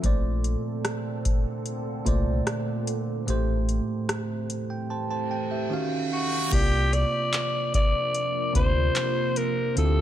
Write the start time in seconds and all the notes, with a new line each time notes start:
Already playing: C4 A4
0.02 A#1 A#2 D3 A3 C5 D5, kick, closed hi-hat
0.44 closed hi-hat
0.85 cross-stick, closed hi-hat
1.25 kick, closed hi-hat
1.66 closed hi-hat
2.04 C2 A#2 A3 C5 D5, kick, closed hi-hat
2.47 cross-stick, closed hi-hat
2.87 closed hi-hat
3.26 A1 A2 E3 A3 G4, closed hi-hat
3.30 C5
3.69 closed hi-hat
4.09 cross-stick, closed hi-hat
4.50 closed hi-hat
4.70 G5
4.90 C5 A5, reverse cymbal
5.11 C5 A5
5.31 G5
5.51 G4 E5
5.69 D#3 C#4 F#4
5.73 F5
6.13 F#4
6.50 C2 C3 F3 A#3 D4 E4 G4, kick, closed hi-hat, crash
6.55 D5
6.60 F4
6.93 D5, closed hi-hat
7.33 clap, closed hi-hat
7.74 D5, kick, closed hi-hat
8.14 closed hi-hat
8.53 D2 C3 A#3 F4 C5, kick, closed hi-hat
8.96 clap, closed hi-hat
9.36 A#4, closed hi-hat
9.75 D2 D3 G3 C4 E4 F4 F#4 A4 E5, closed hi-hat
9.85 G4